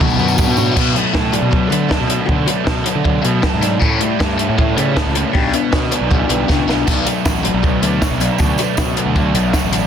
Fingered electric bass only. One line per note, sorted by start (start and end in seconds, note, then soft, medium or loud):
0.01 0.18 B1 loud
0.18 0.44 F#2 loud
0.47 0.73 B2 loud
0.77 0.94 B2 medium
1.15 1.40 A2 medium
1.42 1.68 B2 medium
1.71 1.88 D3 medium
2.00 2.17 B2 medium
2.29 2.46 D3 medium
2.67 2.84 B2 medium
2.95 3.21 D3 medium
3.24 3.42 B2 medium
3.54 3.79 G#2 medium
3.81 3.99 A2 loud
4.21 4.46 G2 medium
4.49 4.74 A2 medium
4.78 4.95 C#3 medium
5.06 5.23 C#2 medium
5.35 5.52 B1 loud
5.73 5.90 B2 medium
6.01 6.27 B1 medium
6.29 6.46 B1 medium
6.49 6.66 C#2 medium
6.68 6.85 B1 medium
6.88 7.04 B1 medium
7.26 7.51 A1 medium
7.54 7.79 B1 medium
7.82 7.99 D2 medium
8.10 8.28 B1 loud
8.40 8.57 D2 medium
8.78 8.95 B2 medium
9.05 9.31 D2 medium
9.34 9.51 B1 medium
9.63 9.87 A1 medium